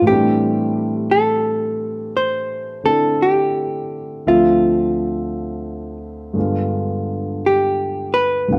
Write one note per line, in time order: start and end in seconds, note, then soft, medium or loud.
0.02 4.23 A2 soft
0.02 4.24 E3 soft
0.07 4.25 A3 soft
0.07 2.83 C4 soft
0.07 1.14 G4 medium
0.11 4.29 G3 soft
0.11 2.84 D4 soft
1.11 2.16 A4 medium
2.17 2.85 C5 medium
2.84 4.25 D3 soft
2.84 4.25 C4 soft
2.84 4.26 D4 soft
2.84 4.26 E4 soft
2.84 3.22 A4 medium
2.84 4.26 A4 soft
3.22 4.28 G4 medium
4.26 6.37 D2 soft
4.26 6.34 D3 soft
4.26 6.37 F3 soft
4.26 6.37 C4 soft
4.26 5.97 F4 medium
4.26 6.37 E5 medium
6.34 8.46 G2 soft
6.34 8.47 D3 soft
6.34 8.48 G#3 soft
6.38 8.49 B3 soft
6.38 8.49 F4 soft
7.46 8.15 G4 medium
8.14 8.59 B4 medium
8.48 8.59 C2 soft
8.48 8.59 G2 soft
8.48 8.59 B2 soft
8.48 8.59 D3 soft
8.53 8.59 E4 soft
8.53 8.59 F#5 soft